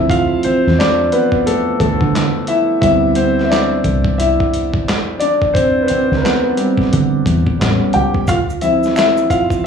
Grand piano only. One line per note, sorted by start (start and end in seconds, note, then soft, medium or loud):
0.00 0.74 F3 medium
0.00 0.74 A3 soft
0.00 0.44 C4 medium
0.00 2.49 E4 medium
0.00 0.11 E5 loud
0.10 0.42 F4 medium
0.10 0.45 F5 loud
0.44 0.76 C4 medium
0.44 0.79 C5 medium
0.79 1.11 D4 medium
0.79 1.13 D5 medium
1.13 1.21 B3 medium
1.13 1.20 B4 medium
1.46 1.79 A3 medium
1.46 1.78 A4 medium
1.80 2.45 A3 medium
1.80 2.50 A4 medium
2.48 2.81 E4 medium
2.48 2.80 E5 medium
2.81 3.30 G3 medium
2.81 3.31 B3 medium
2.81 3.16 C4 medium
2.81 3.14 E4 medium
2.81 3.17 E5 loud
3.16 3.44 C4 medium
3.16 3.43 C5 medium
3.44 3.50 E5 medium
3.50 4.15 D4 medium
3.50 4.21 D5 medium
4.18 4.83 E4 medium
4.18 4.83 E5 medium
5.20 5.53 D4 medium
5.20 5.55 D5 loud
5.54 5.82 C4 medium
5.54 5.84 C5 medium
5.82 5.88 B4 medium
5.87 5.96 C4 medium
5.87 5.94 C5 medium
6.17 6.23 A#4 medium
6.22 6.56 B3 medium
6.22 7.55 B4 medium
6.57 7.56 G3 medium
6.57 7.56 B3 medium
6.57 7.56 C4 medium
7.59 8.08 G3 medium
7.59 8.08 B3 soft
7.59 8.09 C#4 medium
7.94 8.26 G4 medium
7.94 8.25 G5 medium
8.28 8.37 F4 medium
8.28 8.36 F5 medium
8.62 9.67 F3 medium
8.62 9.67 C4 medium
8.62 8.95 E4 medium
8.62 8.94 E5 medium
8.96 9.29 E4 medium
8.96 9.31 E5 medium
9.30 9.63 F4 medium
9.30 9.65 F5 medium